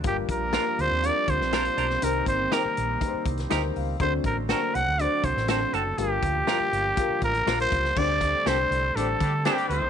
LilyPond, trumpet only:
\new Staff \with { instrumentName = "Trumpet" } { \time 4/4 \key g \minor \tempo 4 = 121 g'8 bes'4 c''8 d''8 c''4. | bes'8 c''8 bes'4. r4. | c''8 bes'8 bes'8 fis''8 d''8 c''8 c''8 a'8 | g'2~ g'8 bes'8. c''8. |
d''4 c''4 a'4 g'8 c''8 | }